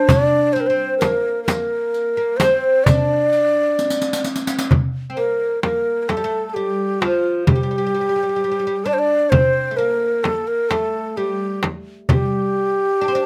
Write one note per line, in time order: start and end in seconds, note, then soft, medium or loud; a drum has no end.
0.08 0.56 D4 medium
0.08 0.54 D5 loud
0.08 riq medium
0.08 darbuka dum loud
0.08 frame drum medium
0.53 0.69 C4 medium
0.53 0.62 C5 medium
0.53 riq soft
0.53 darbuka ka soft
0.60 0.68 A#4 medium
0.67 1.03 C4 medium
0.67 0.97 C5 medium
0.98 1.42 A#4 medium
0.98 riq soft
0.98 darbuka tek medium
0.98 frame drum medium
1.03 1.45 A#3 medium
1.44 2.16 A#3 medium
1.44 2.38 A#4 medium
1.44 riq medium
1.44 frame drum medium
1.48 darbuka tek medium
1.94 riq soft
2.17 2.41 A#3 medium
2.37 2.86 C4 medium
2.37 2.86 C5 medium
2.37 riq soft
2.37 darbuka tek medium
2.37 frame drum medium
2.84 4.20 D4 medium
2.84 4.23 D5 loud
2.84 riq medium
2.84 darbuka dum loud
2.84 frame drum medium
3.33 riq soft
3.33 darbuka ka soft
3.78 riq medium
3.78 darbuka ka soft
3.90 riq medium
4.02 riq medium
4.13 riq medium
4.24 riq medium
4.24 darbuka ka soft
4.36 riq medium
4.47 riq medium
4.59 riq medium
4.71 darbuka dum medium
4.71 frame drum medium
5.10 5.17 C4 soft
5.17 5.62 A#3 medium
5.17 5.60 A#4 medium
5.17 darbuka ka soft
5.63 6.06 A#3 medium
5.63 6.03 A#4 medium
5.63 darbuka tek medium
5.63 frame drum medium
6.03 6.10 A#4 medium
6.08 6.16 A3 medium
6.08 6.49 A4 medium
6.08 darbuka tek medium
6.08 frame drum medium
6.17 6.23 G3 medium
6.24 6.53 A3 medium
6.49 6.55 A4 medium
6.54 7.03 G3 medium
6.54 7.03 G4 medium
7.02 7.49 F3 medium
7.02 7.47 F4 medium
7.02 darbuka tek medium
7.02 frame drum medium
7.47 7.54 G3 medium
7.47 8.87 G4 medium
7.47 frame drum medium
7.47 darbuka dum medium
7.56 7.62 G3 soft
7.63 7.70 G3 soft
7.71 7.77 G3 soft
7.78 7.85 G3 medium
7.87 7.93 G3 soft
7.95 8.00 G3 soft
8.01 8.08 G3 soft
8.09 8.15 G3 soft
8.16 8.22 G3 soft
8.23 8.28 G3 soft
8.29 8.35 G3 soft
8.36 8.43 G3 soft
8.41 8.50 G3 soft
8.41 darbuka ka soft
8.52 8.58 G3 medium
8.60 8.66 G3 soft
8.67 8.75 G3 medium
8.86 9.31 D4 medium
8.86 8.95 D5 medium
8.86 darbuka ka soft
8.93 9.00 C5 medium
8.99 9.31 D5 loud
9.30 9.72 C4 medium
9.30 9.78 C5 loud
9.30 darbuka dum medium
9.30 frame drum medium
9.71 9.78 A3 medium
9.77 10.71 A#3 medium
9.77 10.25 A#4 medium
9.77 darbuka ka soft
10.23 10.49 A4 medium
10.23 darbuka tek medium
10.23 frame drum medium
10.47 10.71 A#4 medium
10.69 11.14 A3 medium
10.69 11.19 A4 medium
10.69 darbuka tek medium
10.69 frame drum medium
11.17 11.60 G3 medium
11.17 11.63 G4 medium
11.63 darbuka tek medium
11.63 frame drum medium
12.09 13.04 G3 medium
12.09 13.26 G4 medium
12.09 darbuka dum medium
12.09 frame drum medium
13.01 13.08 D4 medium
13.01 darbuka ka soft
13.08 13.15 C4 medium
13.15 13.26 D4 medium